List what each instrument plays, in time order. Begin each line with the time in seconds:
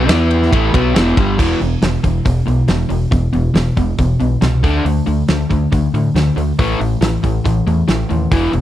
Already playing: tonewheel organ B3 E4 G4 E5
0.08 fingered electric bass E2, overdriven electric guitar E3 B3 E4, snare, ride
0.31 ride
0.42 snare
0.51 fingered electric bass A1, overdriven electric guitar A2 E3 A3, kick, ride
0.73 fingered electric bass B1, overdriven electric guitar B2 F#3 B3, kick, ride
0.95 fingered electric bass E1, overdriven electric guitar E2 B2 E3, snare, ride
1.17 fingered electric bass G1, overdriven electric guitar G2 D3 G3, kick, ride
1.38 fingered electric bass E1, overdriven electric guitar E2 B2 E3, kick, crash
1.60 fingered electric bass E1, overdriven electric guitar E2 B2, open hi-hat
1.82 fingered electric bass E1, overdriven electric guitar E2 B2, snare, open hi-hat
2.04 fingered electric bass E1, overdriven electric guitar E2 B2, kick, open hi-hat
2.25 fingered electric bass E1, overdriven electric guitar E2 B2, kick, open hi-hat
2.46 fingered electric bass B1, overdriven electric guitar E2 B2, open hi-hat
2.68 fingered electric bass E1, overdriven electric guitar E2 B2, snare, open hi-hat
2.89 fingered electric bass E1, overdriven electric guitar E2 B2, open hi-hat
3.11 fingered electric bass E1, overdriven electric guitar E2 B2, kick, open hi-hat
3.33 fingered electric bass E1, overdriven electric guitar E2 B2, open hi-hat
3.54 fingered electric bass E1, overdriven electric guitar E2 B2, snare, open hi-hat
3.77 fingered electric bass E1, overdriven electric guitar E2 B2, kick, open hi-hat
3.98 fingered electric bass E1, overdriven electric guitar E2 B2, kick, open hi-hat
4.20 fingered electric bass B1, overdriven electric guitar E2 B2, open hi-hat
4.41 fingered electric bass C2, overdriven electric guitar E2 B2, snare, open hi-hat
4.63 fingered electric bass D2, overdriven electric guitar D3 A3 D4, kick, open hi-hat
4.85 fingered electric bass D2, overdriven electric guitar D3 A3, open hi-hat
5.06 fingered electric bass D2, overdriven electric guitar D3 A3, open hi-hat
5.28 fingered electric bass D2, overdriven electric guitar D3 A3, snare, open hi-hat
5.50 fingered electric bass D2, overdriven electric guitar D3 A3, kick, open hi-hat
5.72 fingered electric bass D2, overdriven electric guitar D3 A3, kick, open hi-hat
5.93 fingered electric bass A2, overdriven electric guitar D3 A3, open hi-hat
6.14 fingered electric bass D2, overdriven electric guitar D3 A3, snare, open hi-hat
6.36 fingered electric bass D2, overdriven electric guitar D3 A3, open hi-hat
6.59 fingered electric bass A1, overdriven electric guitar A2 E3 A3, kick, open hi-hat
6.80 fingered electric bass A1, overdriven electric guitar A2 E3, open hi-hat
7.01 fingered electric bass A1, overdriven electric guitar A2 E3, snare, open hi-hat
7.23 fingered electric bass A1, overdriven electric guitar A2 E3, kick, open hi-hat
7.44 fingered electric bass A1, overdriven electric guitar A2 E3, kick, open hi-hat
7.67 fingered electric bass E2, overdriven electric guitar A2 E3, open hi-hat
7.88 fingered electric bass A1, overdriven electric guitar A2 E3, snare, open hi-hat
8.09 fingered electric bass D#2, overdriven electric guitar A2 E3, open hi-hat
8.31 fingered electric bass E1, overdriven electric guitar E2 B2 E3, kick, open hi-hat
8.52 fingered electric bass E1, overdriven electric guitar E2 B2, open hi-hat